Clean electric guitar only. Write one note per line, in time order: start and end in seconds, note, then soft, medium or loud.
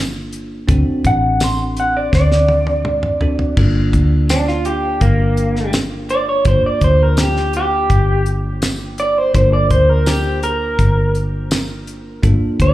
1.07 1.41 F#5 medium
1.44 1.77 C6 medium
1.80 1.96 F#5 medium
1.97 2.13 D5 medium
2.15 3.54 D5 medium
4.30 4.47 D4 medium
4.48 4.65 F4 medium
4.66 5.01 G4 medium
5.02 5.72 A#3 loud
6.11 6.28 D5 loud
6.29 6.46 C#5 medium
6.48 6.64 C5 medium
6.66 6.83 D5 medium
6.84 7.03 C5 medium
7.03 7.20 A#4 medium
7.20 7.54 G4 medium
7.57 8.26 G4 medium
9.00 9.18 D5 loud
9.18 9.34 C5 medium
9.35 9.53 C5 medium
9.53 9.70 D5 medium
9.71 9.89 C5 medium
9.89 10.07 A#4 medium
10.07 10.42 G4 medium
10.44 11.13 A#4 loud
12.62 12.74 D5 medium